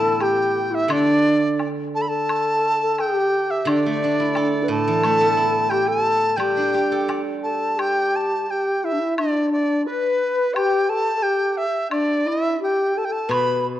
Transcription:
0.00 0.89 A2 medium
0.00 0.20 D3 medium
0.00 0.73 E3 medium
0.00 0.90 A3 soft
0.00 1.08 B3 medium
0.00 1.25 E4 soft
0.00 0.23 A4 medium
0.00 0.24 A5 loud
0.20 0.73 G4 medium
0.20 0.76 G5 medium
0.20 high woodblock soft
0.20 low woodblock soft
0.71 0.89 E4 medium
0.71 0.93 E5 medium
0.88 2.98 D3 medium
0.88 1.64 D4 medium
0.88 1.68 D5 loud
0.88 high woodblock medium
1.60 high woodblock soft
1.60 low woodblock soft
1.95 2.08 A4 medium
1.95 2.03 A5 medium
2.01 2.10 B5 medium
2.08 2.78 A4 medium
2.08 3.02 A5 medium
2.29 high woodblock medium
2.82 3.01 A4 medium
2.98 3.69 G4 medium
2.98 3.52 G5 medium
2.98 high woodblock soft
2.98 low woodblock soft
3.50 3.70 E5 medium
3.65 5.70 D3 medium
3.65 4.64 D4 medium
3.65 4.69 D5 medium
3.65 high woodblock medium
3.86 5.03 A3 soft
4.04 5.38 D4 soft
4.20 5.36 E4 soft
4.35 5.72 A4 soft
4.35 high woodblock soft
4.35 low woodblock soft
4.63 4.71 B4 medium
4.68 6.74 A2 medium
4.68 5.70 A4 medium
4.68 5.71 A5 loud
4.87 6.23 E3 soft
5.03 6.40 A3 soft
5.03 high woodblock medium
5.21 6.57 B3 soft
5.37 6.74 E4 soft
5.69 5.89 G4 medium
5.69 5.89 G5 medium
5.69 high woodblock soft
5.69 low woodblock soft
5.87 6.39 A4 medium
5.87 6.38 A5 loud
6.36 8.48 G3 medium
6.36 7.21 G4 medium
6.36 7.12 G5 loud
6.36 high woodblock medium
6.57 7.97 D4 soft
6.74 8.14 G4 soft
6.92 8.32 A4 soft
7.08 8.49 D5 soft
7.08 high woodblock soft
7.08 low woodblock soft
7.43 7.79 A4 medium
7.43 7.81 A5 medium
7.77 8.48 G4 medium
7.77 8.17 G5 medium
7.77 high woodblock medium
8.16 8.52 A5 medium
8.50 8.85 G4 medium
8.50 8.86 G5 medium
8.84 8.94 E4 medium
8.84 9.17 E5 medium
8.92 9.01 D4 medium
9.00 9.21 E4 medium
9.17 9.88 D4 medium
9.17 9.50 D5 medium
9.17 high woodblock medium
9.52 9.84 D5 medium
9.86 10.55 B4 medium
10.54 10.91 G4 medium
10.54 10.91 G5 loud
10.54 high woodblock medium
10.89 11.15 A4 medium
10.89 11.24 A5 medium
11.16 11.24 A4 medium
11.23 11.65 G4 medium
11.23 11.59 G5 medium
11.57 11.91 E5 medium
11.91 12.28 D4 medium
11.91 12.29 D5 medium
11.91 high woodblock medium
12.26 12.59 E4 medium
12.26 12.62 E5 medium
12.60 12.93 G4 medium
12.60 12.99 G5 medium
12.97 13.07 A4 medium
12.97 13.06 A5 medium
13.05 13.30 A4 medium
13.05 13.13 G5 medium
13.12 13.33 A5 medium
13.29 13.80 B2 medium
13.29 13.65 B4 medium
13.29 13.67 B5 medium
13.29 high woodblock medium

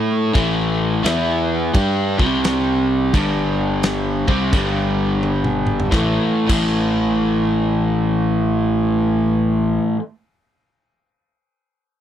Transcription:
0.00 0.30 A2 loud
0.00 0.33 A3 loud
0.00 0.34 E4 medium
0.00 0.34 A4 loud
0.33 1.01 A1 medium
0.33 1.03 A2 medium
0.33 1.02 E3 loud
0.33 1.04 A3 loud
0.33 kick loud
0.33 crash medium
1.04 1.70 E2 medium
1.04 1.73 E3 medium
1.04 1.73 B3 medium
1.04 1.74 E4 loud
1.04 snare loud
1.04 crash medium
1.74 2.16 G2 loud
1.74 2.17 G3 medium
1.74 2.19 D4 medium
1.74 2.18 G4 medium
1.74 kick loud
1.74 crash medium
2.18 3.10 C2 medium
2.18 3.13 C3 medium
2.18 3.13 G3 loud
2.18 3.13 C4 loud
2.18 kick loud
2.44 snare loud
2.44 crash medium
3.13 4.24 G1 medium
3.13 4.27 G2 medium
3.13 4.27 D3 medium
3.13 4.27 G3 loud
3.13 kick loud
3.13 crash medium
3.83 snare loud
3.83 crash medium
4.28 4.51 C2 medium
4.28 4.52 C3 medium
4.28 4.52 G3 loud
4.28 4.53 C4 loud
4.28 kick loud
4.52 5.88 G1 medium
4.52 5.92 G2 medium
4.52 5.91 D3 medium
4.52 5.92 G3 medium
4.52 kick loud
4.52 crash medium
5.23 high tom medium
5.44 mid tom medium
5.67 mid tom medium
5.80 floor tom medium
5.91 6.17 A1 medium
5.91 6.46 A2 medium
5.91 6.49 E3 loud
5.91 6.50 A3 loud
5.91 kick loud
5.91 snare medium
6.47 9.78 A1 medium
6.47 9.97 A2 loud
6.47 9.99 E3 loud
6.47 kick loud
6.47 crash medium
6.51 10.01 A3 loud

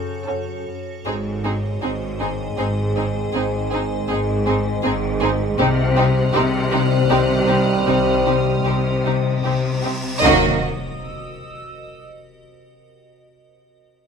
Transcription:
0.00 0.28 F#2 medium
0.00 0.70 C#3 medium
0.00 0.70 F#3 medium
0.00 1.10 F#3 soft
0.00 0.69 C#4 medium
0.00 1.02 F#4 medium
0.00 0.69 A4 medium
0.00 1.06 A4 medium
0.00 1.07 C#5 medium
0.00 0.64 C#6 medium
0.00 0.62 G6 soft
0.27 0.66 F#2 soft
0.27 0.87 C#4 medium
0.27 0.87 F#4 medium
0.27 0.86 A4 soft
0.67 1.09 F#2 soft
1.04 1.73 G#1 medium
1.04 1.73 G#2 medium
1.04 1.44 G#2 medium
1.04 5.55 D#3 medium
1.04 5.56 G#3 medium
1.04 5.55 C4 medium
1.04 1.14 C4 soft
1.04 1.13 D#4 medium
1.04 5.55 G#4 medium
1.04 1.14 G#4 soft
1.04 5.60 G#4 medium
1.04 5.59 C5 medium
1.04 5.59 D#5 medium
1.44 2.20 G#2 soft
1.44 1.52 C4 soft
1.44 1.52 D#4 medium
1.44 1.52 G#4 soft
1.81 2.49 G#1 medium
1.81 2.49 G#2 medium
1.81 4.09 G#3 medium
1.81 1.90 C4 medium
1.81 1.89 D#4 medium
1.81 1.90 G#4 medium
2.20 2.58 G#2 medium
2.20 2.29 C4 soft
2.20 2.28 D#4 medium
2.20 2.29 G#4 soft
2.57 3.25 G#1 medium
2.57 3.24 G#2 medium
2.57 2.96 G#2 medium
2.57 2.66 C4 medium
2.57 2.66 D#4 medium
2.57 2.66 G#4 medium
2.96 3.34 G#2 medium
2.96 3.04 C4 soft
2.96 3.04 D#4 medium
2.96 3.04 G#4 soft
3.33 4.00 G#1 medium
3.33 4.00 G#2 medium
3.33 3.72 G#2 medium
3.33 3.43 C4 medium
3.33 3.43 D#4 medium
3.33 3.41 G#4 medium
3.72 4.47 G#2 medium
3.72 3.80 C4 medium
3.72 3.81 D#4 medium
3.72 3.80 G#4 medium
4.08 4.76 G#1 medium
4.08 4.75 G#2 medium
4.08 5.63 G#3 medium
4.08 4.18 C4 medium
4.08 4.19 D#4 medium
4.08 4.17 G#4 medium
4.46 4.84 G#2 medium
4.46 4.55 C4 medium
4.46 4.55 D#4 medium
4.46 4.54 G#4 medium
4.83 5.51 G#1 medium
4.83 5.50 G#2 medium
4.83 5.22 G#2 medium
4.83 4.92 C4 medium
4.83 4.93 D#4 medium
4.83 4.91 G#4 medium
5.21 5.63 G#2 medium
5.21 5.30 C4 medium
5.21 5.31 D#4 medium
5.21 5.29 G#4 medium
5.58 6.25 C2 medium
5.58 6.25 C3 medium
5.58 5.97 C3 medium
5.58 9.86 D#3 medium
5.58 9.86 G3 loud
5.58 9.86 C4 medium
5.58 5.67 C4 medium
5.58 5.68 D#4 medium
5.58 5.66 G4 medium
5.58 10.23 G4 medium
5.58 9.86 C5 medium
5.58 10.19 C5 medium
5.58 10.19 D#5 medium
5.58 9.80 D#6 medium
5.58 9.01 F6 medium
5.58 8.22 F#6 medium
5.96 6.72 C3 medium
5.96 6.04 C4 medium
5.96 6.05 D#4 medium
5.96 6.05 G4 medium
6.33 7.01 C2 medium
6.33 7.00 C3 medium
6.33 6.42 C4 medium
6.33 8.65 C4 medium
6.33 6.42 D#4 medium
6.33 6.41 G4 medium
6.71 7.10 C3 loud
6.71 6.81 C4 medium
6.71 6.79 D#4 medium
6.71 6.79 G4 medium
7.09 7.78 C2 medium
7.09 7.77 C3 medium
7.09 7.48 C3 medium
7.09 7.18 C4 medium
7.09 7.18 D#4 medium
7.09 7.18 G4 medium
7.47 7.86 C3 medium
7.47 7.56 C4 medium
7.47 7.55 D#4 medium
7.47 7.55 G4 medium
7.86 8.57 C2 medium
7.86 8.56 C3 medium
7.86 8.25 C3 medium
7.86 7.95 C4 medium
7.86 7.95 D#4 medium
7.86 7.95 G4 medium
7.86 cymbal swell medium
8.26 9.05 C3 soft
8.26 8.35 C4 soft
8.26 8.34 D#4 medium
8.26 8.34 G4 medium
8.64 9.35 C2 medium
8.64 9.35 C3 medium
8.64 10.25 C4 medium
8.64 8.75 C4 medium
8.64 8.74 D#4 soft
8.64 8.74 G4 medium
9.05 9.44 C3 medium
9.05 9.14 C4 soft
9.05 9.14 D#4 medium
9.05 9.13 G4 soft
9.43 10.13 C2 medium
9.43 10.13 C3 medium
9.43 9.83 C3 soft
9.43 9.53 C4 soft
9.43 9.53 D#4 soft
9.43 9.52 G4 soft
9.82 10.26 C3 soft
9.82 9.92 C4 soft
9.82 9.92 D#4 soft
9.82 9.90 G4 soft
10.20 10.64 D#2 medium
10.20 10.64 D#3 medium
10.20 10.56 D#3 medium
10.20 10.56 F#3 medium
10.20 10.55 A#3 medium
10.20 10.65 A#3 medium
10.20 10.55 D#4 medium
10.20 10.65 F#4 medium
10.20 10.64 D#5 medium
10.20 12.07 D#6 medium
10.20 10.57 A#6 soft
10.20 impact medium
10.98 12.07 E6 soft

